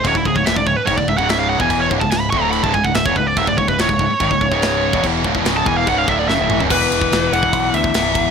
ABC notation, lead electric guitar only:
X:1
M:4/4
L:1/16
Q:1/4=144
K:C#phr
V:1 name="Lead electric guitar"
c E G c e d c B c d e f e ^e f g | g c z a g b c' ^a b =a g f e c B d | e d c B c12 | z4 z a g ^e f e =e d e3 z |
B6 f4 e6 |]